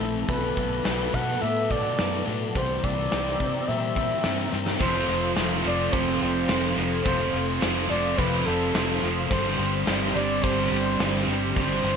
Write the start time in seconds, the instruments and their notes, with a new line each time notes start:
Already playing: distorted electric guitar A2, twelve-string acoustic guitar E3, analog synth pad C4 E5 A5 E6, soft synth lead A4
0.00 fingered electric bass A#1, distorted electric guitar E3 A3, twelve-string acoustic guitar C4, clean electric guitar C4 E4 A4
0.27 fingered electric bass B1, clean electric guitar B2 F#3 A3 D4 A4, distorted electric guitar B2 F#3, twelve-string acoustic guitar A3, soft synth lead B4, analog synth pad F#5 A5 D6, kick, open hi-hat
0.31 distorted electric guitar B3, analog synth pad B4
0.55 fingered electric bass B1, distorted electric guitar F#3 B3, twelve-string acoustic guitar A3, kick
0.84 fingered electric bass B1, distorted electric guitar B2 F#3 B3, clean electric guitar F#3 A3 D4 A4, twelve-string acoustic guitar D4, snare, open hi-hat
1.12 fingered electric bass B2, distorted electric guitar F#3 B3, twelve-string acoustic guitar A3, clean electric guitar A3 D4 A4, soft synth lead F#5, kick
1.40 fingered electric bass A2, distorted electric guitar B2 F#3 B3, twelve-string acoustic guitar A3, soft synth lead E5, open hi-hat
1.69 distorted electric guitar F#3 B3, clean electric guitar A3 D4 A4, twelve-string acoustic guitar D4, soft synth lead D5, kick
1.98 fingered electric bass F#2, distorted electric guitar B2 F#3 B3, twelve-string acoustic guitar A3, snare, open hi-hat
2.26 fingered electric bass A2, distorted electric guitar F#3 B3, twelve-string acoustic guitar D4, clean electric guitar D4 A4
2.30 clean electric guitar A3
2.54 fingered electric bass C2, distorted electric guitar C3 G3 C4, clean electric guitar C3 G3 A#3 E4 G4, twelve-string acoustic guitar E3, analog synth pad C5 G5 A#5 E6, soft synth lead C5, kick, open hi-hat
2.83 fingered electric bass C2, distorted electric guitar G3 C4, twelve-string acoustic guitar A#3, soft synth lead D5, kick
3.11 fingered electric bass C2, distorted electric guitar C3 G3 C4, clean electric guitar G3 A#3 G4, twelve-string acoustic guitar C4, snare, open hi-hat
3.39 fingered electric bass C3, twelve-string acoustic guitar E3, distorted electric guitar G3 C4, clean electric guitar A#3 E4 G4, kick
3.67 fingered electric bass A#2, distorted electric guitar C3 G3 C4, twelve-string acoustic guitar A#3, soft synth lead E5, open hi-hat
3.95 distorted electric guitar G3 C4, twelve-string acoustic guitar C4, clean electric guitar G4, kick
4.22 fingered electric bass G2, distorted electric guitar C3 G3 C4, twelve-string acoustic guitar A#3, snare, open hi-hat
4.50 fingered electric bass G2, distorted electric guitar G3 C4, twelve-string acoustic guitar C4, clean electric guitar E4 G4, snare
4.55 clean electric guitar A#3
4.66 snare
4.79 fingered electric bass F1, distorted electric guitar F2 C3 F3, twelve-string acoustic guitar F3, clean electric guitar F3 C4 A4, analog synth pad A4 C5 F5 C6, soft synth lead C5, kick, crash
5.07 fingered electric bass F1, twelve-string acoustic guitar F3, crash
5.35 fingered electric bass F1, distorted electric guitar F2 C3 F3, twelve-string acoustic guitar F3, snare, crash
5.63 fingered electric bass F1, distorted electric guitar F2 C3 F3, twelve-string acoustic guitar C4, soft synth lead D5, crash
5.91 fingered electric bass F1, distorted electric guitar F2 C3 F3, twelve-string acoustic guitar F3, soft synth lead C5, kick, crash
6.20 fingered electric bass F1, distorted electric guitar C3 F3, twelve-string acoustic guitar C4, soft synth lead C5, crash
6.48 fingered electric bass F1, distorted electric guitar F2 C3 F3, twelve-string acoustic guitar A3, snare, crash
6.75 fingered electric bass F1, distorted electric guitar F2 C3 F3, twelve-string acoustic guitar F3, crash
7.03 fingered electric bass F1, distorted electric guitar F2 C3 F3, twelve-string acoustic guitar F3, soft synth lead C5, kick, crash
7.32 fingered electric bass F1, twelve-string acoustic guitar F3, crash
7.60 fingered electric bass F1, distorted electric guitar F2 C3, twelve-string acoustic guitar F3, snare, crash
7.65 distorted electric guitar F3
7.88 fingered electric bass F1, distorted electric guitar F2 C3 F3, twelve-string acoustic guitar C4, soft synth lead D5, crash
7.93 distorted electric guitar C3
8.16 fingered electric bass F1, distorted electric guitar F2 C3 F3, twelve-string acoustic guitar F3, soft synth lead B4, kick, crash
8.45 fingered electric bass F1, distorted electric guitar C3 F3, twelve-string acoustic guitar C4, soft synth lead A4, crash
8.73 fingered electric bass F1, distorted electric guitar F2 C3 F3, twelve-string acoustic guitar A3, snare, crash
9.02 fingered electric bass F1, distorted electric guitar F2 C3 F3, twelve-string acoustic guitar F3, crash
9.29 fingered electric bass G1, distorted electric guitar G2 D3 G3, clean electric guitar G2 D3 G3 C4, twelve-string acoustic guitar G3, soft synth lead C5, analog synth pad D5, kick, crash
9.33 clean electric guitar D4 G4, analog synth pad G4
9.57 fingered electric bass G1, twelve-string acoustic guitar G3, crash
9.86 fingered electric bass G1, distorted electric guitar G2 D3 G3, twelve-string acoustic guitar G3, snare, crash
10.14 fingered electric bass G1, distorted electric guitar G2 G3, twelve-string acoustic guitar D4, soft synth lead D5, crash
10.18 distorted electric guitar D3
10.41 fingered electric bass G1, distorted electric guitar G2 D3 G3, twelve-string acoustic guitar G3, soft synth lead C5, kick, crash
10.69 fingered electric bass G1, distorted electric guitar G3, twelve-string acoustic guitar D4, soft synth lead C5, crash
10.75 distorted electric guitar D3
10.98 fingered electric bass G1, distorted electric guitar G2 D3 G3, twelve-string acoustic guitar C4, snare, crash
11.26 fingered electric bass G1, distorted electric guitar G2 D3 G3, twelve-string acoustic guitar G3, crash
11.55 fingered electric bass G1, distorted electric guitar G2 D3 G3, twelve-string acoustic guitar G3, soft synth lead C5, analog synth pad E5, kick, crash
11.84 fingered electric bass G1, twelve-string acoustic guitar G3, crash